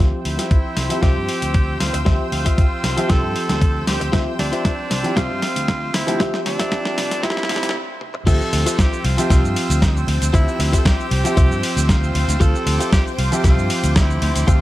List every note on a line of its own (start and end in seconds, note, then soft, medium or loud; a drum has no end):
0.00 0.11 D2 medium
0.00 0.87 F3 medium
0.00 0.87 C4 medium
0.00 0.19 F4 loud
0.00 0.19 G4 medium
0.00 0.88 G4 medium
0.00 0.19 C5 medium
0.00 7.71 C5 medium
0.00 0.19 E5 medium
0.00 0.87 E5 medium
0.00 7.71 G5 medium
0.00 7.71 E6 medium
0.25 0.36 D2 medium
0.25 1.03 E4 medium
0.25 open hi-hat loud
0.38 0.58 F4 medium
0.38 0.58 G4 medium
0.38 0.58 C5 medium
0.38 0.58 E5 medium
0.38 snare soft
0.38 closed hi-hat medium
0.51 kick loud
0.51 closed hi-hat medium
0.76 0.88 C2 medium
0.76 muted clean electric guitar stroke soft
0.76 snare soft
0.76 open hi-hat loud
0.89 2.03 F3 medium
0.89 2.03 C4 medium
0.89 2.04 G4 loud
0.89 2.03 E5 medium
0.89 closed hi-hat medium
1.02 1.14 C2 medium
1.02 1.16 F4 medium
1.02 1.79 G4 loud
1.02 1.16 G4 medium
1.02 1.16 C5 medium
1.02 1.17 E5 medium
1.02 kick loud
1.02 snare medium
1.02 closed hi-hat medium
1.17 1.27 G2 medium
1.28 muted clean electric guitar stroke soft
1.28 open hi-hat medium
1.42 1.77 D2 medium
1.42 closed hi-hat medium
1.54 kick loud
1.54 closed hi-hat medium
1.80 1.91 D2 medium
1.80 2.04 F4 medium
1.80 snare medium
1.80 open hi-hat loud
1.93 2.04 D2 medium
1.93 muted clean electric guitar stroke medium
1.93 closed hi-hat medium
2.05 2.18 D2 medium
2.05 2.94 F3 medium
2.05 2.94 C4 medium
2.05 2.26 F4 loud
2.05 2.26 G4 medium
2.05 2.95 G4 medium
2.05 2.26 C5 loud
2.05 2.26 E5 loud
2.05 2.94 E5 medium
2.05 kick loud
2.05 snare medium
2.05 closed hi-hat soft
2.32 2.43 D2 medium
2.32 3.11 F4 medium
2.32 open hi-hat loud
2.45 2.64 F4 medium
2.45 2.65 G4 medium
2.45 2.65 C5 medium
2.45 2.65 E5 medium
2.45 kick medium
2.45 closed hi-hat medium
2.58 kick loud
2.58 closed hi-hat medium
2.83 2.95 C2 medium
2.83 muted clean electric guitar stroke soft
2.83 snare medium
2.83 open hi-hat loud
2.96 4.10 F3 loud
2.96 4.10 C4 medium
2.96 4.11 G4 loud
2.96 4.10 E5 medium
2.96 closed hi-hat medium
3.09 3.21 C2 medium
3.09 3.23 F4 medium
3.09 3.23 G4 medium
3.09 3.87 A4 loud
3.09 3.23 C5 medium
3.09 3.24 E5 loud
3.09 kick loud
3.09 snare medium
3.09 closed hi-hat medium
3.23 3.33 G2 medium
3.35 muted clean electric guitar stroke soft
3.35 open hi-hat loud
3.49 3.84 D2 medium
3.49 snare medium
3.49 closed hi-hat medium
3.62 kick loud
3.62 closed hi-hat medium
3.87 3.99 D2 loud
3.87 4.12 G4 medium
3.87 snare medium
3.87 open hi-hat loud
4.00 4.11 D2 medium
4.00 muted clean electric guitar stroke medium
4.00 closed hi-hat medium
4.12 4.24 D2 loud
4.12 5.01 F3 medium
4.12 5.01 C4 medium
4.12 4.33 F4 loud
4.12 4.33 G4 medium
4.12 5.02 G4 medium
4.12 4.33 C5 loud
4.12 5.01 E5 medium
4.12 4.33 E5 loud
4.12 kick loud
4.12 snare medium
4.12 closed hi-hat soft
4.39 4.50 D2 medium
4.39 5.18 D4 medium
4.39 snare medium
4.39 open hi-hat loud
4.52 4.71 F4 medium
4.52 4.72 G4 medium
4.52 4.72 C5 medium
4.52 4.72 E5 loud
4.52 closed hi-hat medium
4.65 kick loud
4.65 snare medium
4.65 closed hi-hat soft
4.90 5.02 C2 medium
4.90 muted clean electric guitar stroke soft
4.90 snare medium
4.90 open hi-hat loud
5.03 5.14 F3 medium
5.03 5.14 C4 medium
5.03 5.15 E4 medium
5.03 5.15 G4 loud
5.03 closed hi-hat medium
5.16 5.28 C2 medium
5.16 6.04 F3 medium
5.16 5.30 F4 medium
5.16 5.96 F4 loud
5.16 5.30 G4 medium
5.16 5.31 C5 medium
5.16 5.31 E5 medium
5.16 kick loud
5.16 snare medium
5.16 closed hi-hat soft
5.30 5.40 G2 medium
5.42 muted clean electric guitar stroke soft
5.42 snare medium
5.42 open hi-hat loud
5.56 5.91 D2 medium
5.56 closed hi-hat medium
5.68 kick loud
5.68 snare medium
5.68 closed hi-hat medium
5.94 6.05 D2 loud
5.94 6.20 E4 loud
5.94 snare loud
5.94 open hi-hat loud
6.07 6.18 D2 loud
6.07 6.17 F3 loud
6.07 6.18 C4 medium
6.07 6.18 E4 medium
6.07 6.19 G4 loud
6.07 muted clean electric guitar stroke medium
6.07 closed hi-hat medium
6.19 6.31 D2 medium
6.19 6.69 F3 medium
6.19 6.70 C4 medium
6.19 6.40 F4 loud
6.19 6.40 G4 medium
6.19 6.70 G4 medium
6.19 6.40 C5 loud
6.19 6.70 E5 medium
6.19 6.40 E5 loud
6.19 kick loud
6.19 snare medium
6.19 closed hi-hat soft
6.34 snare medium
6.46 6.57 D2 medium
6.46 7.25 D4 loud
6.46 snare medium
6.46 open hi-hat loud
6.59 6.78 F4 medium
6.59 6.79 G4 medium
6.59 6.79 C5 medium
6.59 6.79 E5 loud
6.59 kick medium
6.59 snare medium
6.59 closed hi-hat medium
6.71 7.21 F3 medium
6.71 7.21 C4 medium
6.71 7.22 G4 medium
6.71 7.22 E5 medium
6.71 kick loud
6.71 snare loud
6.71 closed hi-hat soft
6.85 snare medium
6.97 7.09 C2 medium
6.97 muted clean electric guitar stroke soft
6.97 snare medium
6.97 open hi-hat loud
7.11 snare medium
7.11 closed hi-hat medium
7.22 7.47 F3 medium
7.22 7.47 C4 medium
7.22 7.48 E4 medium
7.22 7.75 E4 loud
7.22 7.37 F4 medium
7.22 7.37 G4 medium
7.22 7.48 G4 medium
7.22 7.37 C5 medium
7.22 7.37 E5 medium
7.22 kick loud
7.22 snare loud
7.22 closed hi-hat medium
7.30 snare medium
7.37 snare medium
7.43 snare medium
7.48 7.75 D2 loud
7.48 7.73 F3 medium
7.48 7.73 C4 medium
7.48 7.73 E4 medium
7.48 7.74 G4 medium
7.48 muted clean electric guitar stroke soft
7.48 snare loud
7.48 open hi-hat loud
7.56 snare medium
7.63 snare medium
7.63 closed hi-hat medium
7.69 snare medium
8.01 high tom medium
8.14 muted clean electric guitar stroke medium
8.14 mid tom medium
8.26 8.38 D2 medium
8.26 9.15 F3 medium
8.26 9.15 C4 medium
8.26 8.40 F4 medium
8.26 8.41 G4 medium
8.26 9.16 G4 medium
8.26 8.80 A4 loud
8.26 14.61 C5 medium
8.26 8.41 C5 medium
8.26 9.15 E5 medium
8.26 8.41 E5 loud
8.26 14.61 G5 medium
8.26 12.37 E6 medium
8.26 kick loud
8.26 closed hi-hat medium
8.26 crash loud
8.26 shaker medium
8.41 shaker soft
8.52 8.64 D2 medium
8.52 muted clean electric guitar stroke loud
8.52 open hi-hat loud
8.52 ride medium
8.66 8.98 F4 loud
8.66 8.98 G4 medium
8.66 8.99 C5 medium
8.66 8.99 E5 medium
8.66 closed hi-hat medium
8.66 shaker medium
8.79 9.06 G4 loud
8.79 kick loud
8.79 snare loud
8.79 closed hi-hat medium
8.79 shaker medium
8.93 shaker soft
9.04 9.16 C2 loud
9.04 9.30 F4 medium
9.04 open hi-hat loud
9.04 ride medium
9.17 10.31 F3 loud
9.17 10.31 C4 medium
9.17 10.32 G4 loud
9.17 10.31 E5 medium
9.17 closed hi-hat medium
9.17 shaker medium
9.30 9.42 C2 medium
9.30 9.44 F4 medium
9.30 10.04 F4 medium
9.30 9.44 G4 medium
9.30 9.44 C5 medium
9.30 9.44 E5 medium
9.30 kick loud
9.30 snare medium
9.30 closed hi-hat medium
9.30 shaker medium
9.44 9.54 G2 medium
9.44 shaker soft
9.56 muted clean electric guitar stroke soft
9.56 open hi-hat loud
9.56 ride medium
9.70 10.04 D2 medium
9.70 closed hi-hat medium
9.70 shaker medium
9.82 kick loud
9.82 snare loud
9.82 closed hi-hat medium
9.82 shaker medium
9.97 shaker soft
10.07 10.19 D2 loud
10.07 muted clean electric guitar stroke soft
10.07 open hi-hat loud
10.07 ride medium
10.22 10.32 D2 loud
10.22 closed hi-hat medium
10.22 shaker medium
10.33 10.45 D2 loud
10.33 11.21 F3 medium
10.33 11.22 C4 medium
10.33 10.80 E4 loud
10.33 10.47 F4 loud
10.33 10.48 G4 medium
10.33 11.22 G4 medium
10.33 10.48 C5 loud
10.33 11.22 E5 medium
10.33 10.48 E5 loud
10.33 kick loud
10.33 closed hi-hat medium
10.33 shaker medium
10.48 shaker soft
10.59 10.71 D2 medium
10.59 muted clean electric guitar stroke loud
10.59 open hi-hat loud
10.59 ride medium
10.73 11.05 F4 medium
10.73 11.05 G4 medium
10.73 11.05 C5 medium
10.73 11.06 E5 medium
10.73 kick medium
10.73 closed hi-hat medium
10.73 shaker medium
10.79 10.87 A4 medium
10.85 11.82 G4 loud
10.85 kick loud
10.85 snare loud
10.85 closed hi-hat medium
10.85 shaker medium
11.00 shaker soft
11.11 11.23 C2 medium
11.11 open hi-hat loud
11.11 ride medium
11.24 12.37 F3 loud
11.24 12.38 C4 medium
11.24 12.38 G4 loud
11.24 12.38 E5 medium
11.24 closed hi-hat medium
11.24 shaker medium
11.36 11.49 C2 medium
11.36 11.51 F4 medium
11.36 11.51 G4 medium
11.36 11.51 C5 medium
11.36 11.51 E5 loud
11.36 kick loud
11.36 closed hi-hat medium
11.36 shaker medium
11.51 11.61 G2 medium
11.51 shaker soft
11.62 muted clean electric guitar stroke soft
11.62 open hi-hat loud
11.62 ride medium
11.77 12.11 D2 medium
11.77 closed hi-hat medium
11.77 shaker medium
11.82 11.90 G4 medium
11.89 12.42 F4 loud
11.89 kick loud
11.89 snare loud
11.89 closed hi-hat medium
11.89 shaker medium
12.03 shaker soft
12.14 12.26 D2 loud
12.14 muted clean electric guitar stroke soft
12.14 open hi-hat loud
12.14 ride medium
12.28 12.38 D2 loud
12.28 closed hi-hat medium
12.28 shaker medium
12.40 12.52 D2 loud
12.40 13.28 F3 medium
12.40 13.29 C4 medium
12.40 12.54 F4 loud
12.40 12.54 G4 loud
12.40 13.29 G4 medium
12.40 12.92 A4 loud
12.40 12.54 C5 loud
12.40 12.55 F5 loud
12.40 14.61 D6 medium
12.40 kick loud
12.40 closed hi-hat medium
12.40 shaker medium
12.55 shaker soft
12.66 12.78 D2 medium
12.66 muted clean electric guitar stroke loud
12.66 open hi-hat loud
12.66 ride medium
12.80 13.12 F4 medium
12.80 13.12 G4 medium
12.80 13.12 C5 medium
12.80 13.12 E5 medium
12.80 closed hi-hat medium
12.80 shaker medium
12.93 13.04 G4 loud
12.93 kick loud
12.93 snare loud
12.93 closed hi-hat medium
12.93 shaker medium
13.07 shaker soft
13.18 13.30 C2 medium
13.18 13.43 F4 medium
13.18 open hi-hat loud
13.18 ride medium
13.31 14.44 F3 loud
13.31 14.45 C4 medium
13.31 14.45 G4 loud
13.31 14.45 E5 medium
13.31 closed hi-hat medium
13.31 shaker medium
13.44 13.56 C2 medium
13.44 13.58 F4 medium
13.44 13.93 F4 loud
13.44 13.58 G4 medium
13.44 13.58 C5 medium
13.44 13.58 E5 medium
13.44 kick loud
13.44 snare medium
13.44 closed hi-hat medium
13.44 shaker medium
13.58 13.68 G2 medium
13.58 shaker soft
13.70 muted clean electric guitar stroke soft
13.70 open hi-hat loud
13.70 ride medium
13.84 14.18 D2 medium
13.84 closed hi-hat medium
13.84 shaker medium
13.96 14.50 E4 medium
13.96 kick loud
13.96 snare loud
13.96 closed hi-hat medium
13.96 shaker medium
14.10 shaker soft
14.21 14.33 D2 loud
14.21 muted clean electric guitar stroke soft
14.21 open hi-hat loud
14.21 ride medium
14.36 14.46 D2 medium
14.36 closed hi-hat medium
14.36 shaker medium
14.47 14.59 D2 loud
14.47 14.61 F3 medium
14.47 14.61 C4 medium
14.47 14.61 F4 loud
14.47 14.61 G4 loud
14.47 14.61 G4 medium
14.47 14.61 C5 loud
14.47 14.61 E5 medium
14.47 14.61 E5 loud
14.47 kick loud
14.47 closed hi-hat soft
14.47 shaker medium